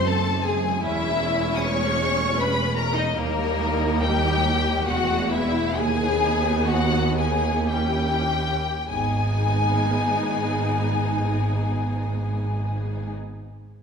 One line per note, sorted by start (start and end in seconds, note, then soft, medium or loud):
0.00 0.77 F#1 loud
0.00 0.78 F#2 loud
0.00 0.78 G#3 medium
0.00 0.77 C4 loud
0.06 0.43 A4 loud
0.06 0.44 A5 loud
0.43 0.81 G#4 loud
0.43 0.81 G#5 loud
0.81 3.11 E1 loud
0.81 3.11 E2 loud
0.81 3.11 G#3 loud
0.81 3.11 C#4 loud
0.81 1.63 E4 loud
0.81 1.57 E5 loud
1.55 1.64 D#6 loud
1.64 2.40 C#5 loud
1.64 2.40 C#6 loud
2.40 2.77 B4 loud
2.40 2.77 B5 loud
2.76 2.96 A#4 loud
2.76 2.95 A#5 loud
2.96 3.15 D#4 loud
2.96 3.16 D#5 loud
3.15 4.84 D#2 loud
3.15 4.83 G3 loud
3.15 4.01 A#3 loud
3.15 4.83 D#4 loud
3.15 4.02 A#4 loud
4.02 4.88 G4 loud
4.02 4.87 G5 loud
4.87 5.75 E1 loud
4.87 5.75 E2 loud
4.87 5.71 G#3 medium
4.87 5.71 B3 medium
4.87 5.31 F#4 loud
4.87 5.30 F#5 loud
5.31 5.75 E4 loud
5.31 5.75 E5 loud
5.75 8.54 D#2 loud
5.75 7.66 B3 loud
5.75 7.66 D#4 medium
5.75 6.67 G#4 loud
5.75 6.68 G#5 loud
6.67 7.17 F#4 loud
6.67 7.18 F#5 loud
7.17 7.69 G#4 loud
7.17 7.69 G#5 loud
7.69 8.54 C#4 medium
7.69 8.55 E4 medium
7.69 8.88 G4 medium
7.69 8.86 G5 loud
8.88 13.11 G#1 loud
8.88 13.11 G#2 loud
8.88 13.12 B3 medium
8.88 13.12 D#4 medium
8.88 13.11 G#4 medium
8.88 13.12 G#5 loud